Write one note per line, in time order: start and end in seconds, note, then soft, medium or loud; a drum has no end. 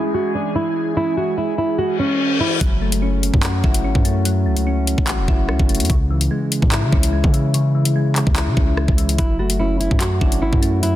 0.00 2.57 E3 medium
0.00 2.58 G#3 medium
0.00 2.57 C#4 medium
0.00 0.12 E4 medium
0.00 2.58 G#4 medium
0.14 0.33 F#4 medium
0.35 0.53 D4 medium
0.56 0.94 E4 medium
0.97 1.15 E4 loud
1.17 1.36 F#4 medium
1.38 1.56 E4 medium
1.58 1.77 E4 medium
1.78 1.97 F#4 medium
1.78 reverse cymbal medium
1.99 2.38 C#4 medium
2.40 2.59 E4 medium
2.61 3.31 F#1 loud
2.61 3.64 F#3 medium
2.61 kick loud
2.61 closed hi-hat medium
2.82 3.84 A3 medium
2.92 closed hi-hat medium
3.02 3.83 C#4 medium
3.23 closed hi-hat medium
3.34 3.63 F#2 loud
3.34 kick loud
3.43 4.46 F#4 loud
3.43 clap loud
3.43 closed hi-hat medium
3.64 3.86 F#1 loud
3.64 4.67 E4 medium
3.64 kick loud
3.74 closed hi-hat medium
3.84 3.95 G#1 loud
3.84 4.65 C#4 medium
3.95 4.47 F#2 loud
3.95 kick medium
4.05 4.45 A3 medium
4.05 closed hi-hat medium
4.25 5.28 F#3 medium
4.25 closed hi-hat medium
4.46 4.95 C#2 loud
4.46 5.49 A3 medium
4.57 closed hi-hat medium
4.67 5.48 C#4 medium
4.87 closed hi-hat medium
4.98 5.20 A1 loud
4.98 kick loud
5.07 5.90 F#4 loud
5.07 clap loud
5.07 closed hi-hat medium
5.18 5.28 E1 loud
5.28 5.50 F#1 loud
5.28 5.90 E4 medium
5.28 kick medium
5.49 5.59 C#2 loud
5.49 5.90 C#4 medium
5.49 cross-stick medium
5.59 5.82 F#1 loud
5.59 kick medium
5.69 5.90 A3 medium
5.69 closed hi-hat soft
5.75 closed hi-hat medium
5.80 5.89 F#2 loud
5.80 closed hi-hat medium
5.85 closed hi-hat medium
5.90 6.29 C#2 loud
5.90 6.93 C#3 loud
5.90 kick loud
6.10 7.13 E3 medium
6.21 closed hi-hat medium
6.31 7.12 G#3 medium
6.52 closed hi-hat medium
6.62 6.84 G#2 loud
6.62 kick medium
6.72 7.75 E4 loud
6.72 clap loud
6.72 closed hi-hat medium
6.83 6.92 C#3 loud
6.92 7.23 C#2 loud
6.92 7.95 C#4 medium
6.92 kick medium
7.03 closed hi-hat medium
7.13 7.94 G#3 medium
7.24 8.23 C#3 loud
7.24 kick medium
7.33 7.74 E3 medium
7.33 closed hi-hat medium
7.54 8.57 C#3 loud
7.54 closed hi-hat medium
7.75 8.78 E3 medium
7.85 closed hi-hat medium
7.96 8.76 G#3 medium
8.16 clap medium
8.16 closed hi-hat medium
8.27 8.49 C#2 loud
8.27 kick loud
8.36 9.19 E4 loud
8.36 clap loud
8.36 closed hi-hat medium
8.47 8.56 C#3 loud
8.57 8.87 C#2 loud
8.57 9.18 C#4 medium
8.57 kick medium
8.77 9.18 G#3 medium
8.77 cross-stick medium
8.88 9.17 C#2 loud
8.88 kick medium
8.98 9.18 E3 medium
8.98 closed hi-hat medium
9.09 closed hi-hat medium
9.18 9.88 F#1 loud
9.18 10.21 F#3 loud
9.18 9.37 E4 loud
9.18 kick loud
9.18 closed hi-hat medium
9.39 10.42 A3 medium
9.39 9.58 F#4 medium
9.50 closed hi-hat medium
9.59 10.41 C#4 medium
9.59 9.78 E4 medium
9.80 9.99 E4 medium
9.80 closed hi-hat medium
9.91 10.20 F#2 loud
9.91 kick loud
10.00 10.96 F#4 loud
10.00 10.19 F#4 medium
10.00 clap loud
10.00 closed hi-hat medium
10.21 10.43 F#1 loud
10.21 10.40 D4 medium
10.21 10.96 E4 medium
10.21 kick loud
10.32 closed hi-hat medium
10.42 10.52 G#1 loud
10.42 10.96 C#4 medium
10.42 10.81 E4 medium
10.53 10.96 F#2 loud
10.53 kick medium
10.62 10.96 A3 medium
10.62 closed hi-hat medium
10.83 10.96 F#3 medium
10.83 10.96 E4 loud
10.83 closed hi-hat medium